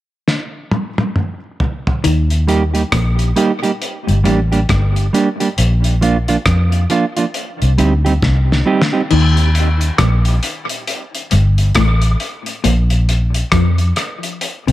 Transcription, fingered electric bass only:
2.06 D#2
2.93 A#1
4.09 G1
4.26 A1
4.70 G1
5.59 A#1
6.47 F2
7.62 C2
7.79 D2
8.23 C2
9.13 D#2
10.00 A#1
11.33 G1
11.76 A1
12.65 A#1
13.53 F2
14.68 C2

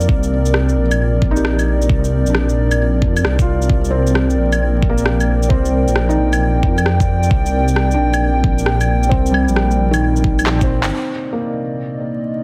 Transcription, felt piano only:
Already playing: F3 A#3
1.31 D#4
1.36 G4
2.30 D4
3.42 F4
3.91 C4
4.89 A#3
5.49 C4
6.09 D#4
7.94 D4
9.09 C4
9.31 G3
9.91 D#3
10.63 C4
11.33 A#3

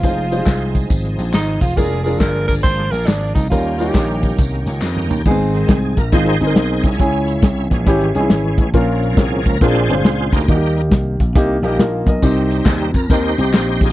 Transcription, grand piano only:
0.04 G#3 D#4 F4 C5
0.32 G3 D#4 F4 C5
0.37 G#3
1.77 G#3 D4 F4 A#4
2.06 G#3 D4 F4 A#4
3.51 D#3 G3 C#4 D#4 A#4
3.80 G3 C#4 D#4 F4
5.26 G#2 B3 D#4 G#4
5.31 C4
6.13 C4 D#4 F4
6.41 C4 D#4 G#4
6.47 A#4
7.00 C#3 C#4 E4 G#4
7.87 C#4 E4 G4
8.15 C#4 D#4 G#4
8.20 E4
8.74 A#2 C#4 F4 A#4
9.61 A#2 G#3 C4 D4 F4 A#4
9.90 G#3 C4 D4 F4 C5
10.49 D#3 A#3 D#4 F#4
10.55 G4
11.35 A#3 D#4 G4
11.64 A#3 D#4 G4
11.80 F4 A#4
12.08 A#4 D#5
12.22 C3 C4 D#4 G4
13.10 C4 D#4 A#4
13.38 C4 D#4 G4

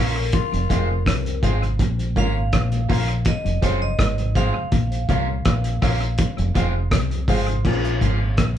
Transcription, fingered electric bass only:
Already playing: A#1
0.54 F1
0.71 F1
1.07 C2
1.43 G#1
1.80 A#1
2.16 G#1
2.53 A#1
2.90 A#1
3.46 F1
3.63 F#1
3.99 G#1
4.72 A#1
5.09 C2
5.46 A#1
5.83 A#1
6.39 F1
6.56 F1
6.92 C2
7.28 G#1
7.65 A#1
8.02 G#1
8.38 A#1

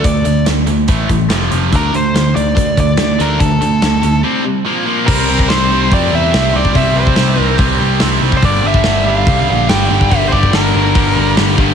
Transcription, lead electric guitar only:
0.05 D5
1.76 A#4
1.95 C5
2.36 D5
2.80 D5
3.21 A#4
3.40 A4
5.06 A#4
5.49 C5
5.94 D5
6.15 E5
6.56 D5
6.76 E5
6.96 C5
7.41 A#4
8.37 C5
8.45 D5
8.67 E5
9.09 F5
9.69 G5
10.11 E5
10.28 C5
10.32 D5
10.55 A#4

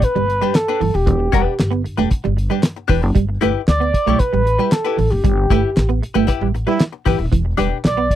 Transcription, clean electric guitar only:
0.15 G3
0.28 muted clean electric guitar stroke
0.41 G3
0.80 E3
1.06 E3
1.19 muted clean electric guitar stroke
1.33 G3
1.71 B3
1.84 muted clean electric guitar stroke
1.98 A3
2.24 G3
2.37 muted clean electric guitar stroke
2.50 G3
2.90 E3
3.15 G3
3.29 muted clean electric guitar stroke
3.41 A3
3.80 B3
3.93 muted clean electric guitar stroke
4.06 A3
4.33 G3
4.46 muted clean electric guitar stroke
4.59 G3
4.97 E3
5.24 G3
5.37 muted clean electric guitar stroke
5.51 A3
5.89 B3
6.03 muted clean electric guitar stroke
6.15 A3
6.42 G3
6.55 muted clean electric guitar stroke
6.67 G3
7.06 E3
7.32 E3
7.45 muted clean electric guitar stroke
7.57 G3
7.97 B3
8.11 muted clean electric guitar stroke

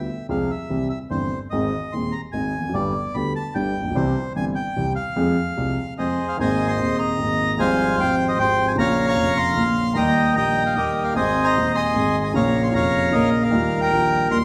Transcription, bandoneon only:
Already playing: E5
0.30 F5
0.51 E5
0.90 E5
1.11 C5
1.50 D#5
1.92 C6
2.12 A#5
2.32 G#5
2.74 D5
3.14 B5
3.36 A5
3.55 G5
3.96 C5
4.36 G#5
4.55 G5
4.96 F5
5.98 G#4 C5 D#5
6.29 F5
6.40 C5 D#5 G#5
6.68 D#5 C6
6.99 D#5 A#5
7.59 C5 F5 G#5
8.00 C5 G5
8.29 D#5
8.39 C5 G5
8.68 G#5
8.78 C#5 F5 A#5
9.08 F5 A#5 C#6
9.37 F5 C6
9.95 D#5 G5 A#5
10.36 D#5 G5 A#5
10.66 F5
10.75 G4 A#4 D#5
11.04 F5
11.15 C5 D#5 G#5
11.44 D#5 A#5
11.75 D#5 G#5 C6
12.24 G#5
12.34 C#5 F5 A#5
12.64 C6
12.74 C#5 F5 A#5
13.13 A#4 D#5
13.42 A#4 F5
13.81 A#4 G5
14.31 C6

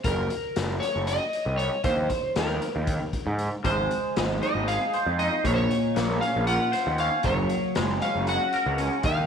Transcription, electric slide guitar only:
0.05 A#4
0.80 C#5
1.08 D#5
1.57 C#5
1.84 C5
2.38 A#4
3.65 C5
4.43 D#5
4.68 F5
5.19 D#5
5.46 C#5
5.54 C5 C#5
6.21 F5
6.47 F#5
7.00 F5
7.25 C#5
8.02 F5
8.29 F#5
9.06 F5

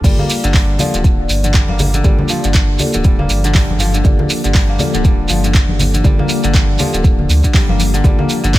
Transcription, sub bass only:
0.04 G1
0.44 G1
0.94 D1
1.29 G1
1.69 G1
2.05 G1
2.44 G1
2.94 D1
3.29 G1
3.69 G1
4.05 G1
4.45 G1
4.94 D1
5.30 G1
5.69 G1
6.04 G1
6.44 G1
6.94 D1
7.29 D2
7.69 G1
8.04 G1
8.44 G1

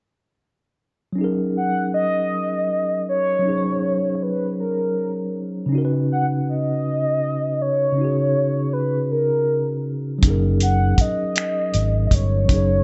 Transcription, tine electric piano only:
1.13 F#3 C#4
1.18 D#4 G#4
1.24 A#4
3.39 F#3 C#4
3.46 D#4 G#4
3.51 C5
3.58 C#5
5.66 C#3 C#4
5.72 D#4 F#4
5.78 A#4
5.85 B4
7.92 C#3 C#4
7.98 D#4 F#4
8.04 G#4
10.18 F#3 C#4
10.24 D#4 G#4
10.30 A#4
12.45 F#3 C#4
12.51 D#4 G#4
12.56 C#5

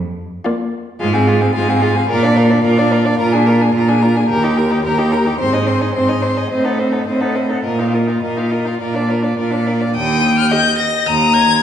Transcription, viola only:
0.46 A#3
1.00 G#3
1.14 C4
1.27 G#3
1.41 C4
1.54 G#3
1.68 C4
1.81 G#3
1.95 C4
2.09 F4
2.24 D4
2.37 F4
2.50 D4
2.64 F4
2.78 D4
2.91 F4
3.05 D4
3.19 F4
3.34 D4
3.48 F4
3.61 D4
3.74 F4
3.89 D4
4.03 F4
4.16 D4
4.29 G4
4.43 D#4
4.58 G4
4.71 D#4
4.85 G4
4.98 D#4
5.12 G4
5.26 D#4
5.40 C4
5.54 D#4
5.67 C4
5.82 D#4
5.95 C4
6.09 D#4
6.22 C4
6.37 D#4
6.51 C4
6.64 D#4
6.79 C4
6.93 D#4
7.07 C4
7.21 D#4
7.35 C4
7.49 D#4
7.64 F4
7.79 D#4
7.93 F4
8.07 D#4
8.22 F4
8.37 D#4
8.51 F4
8.65 D#4
8.79 F4
8.94 D4
9.09 F4
9.22 D4
9.37 F4
9.51 D4
9.66 F4
9.80 D4
10.52 G4

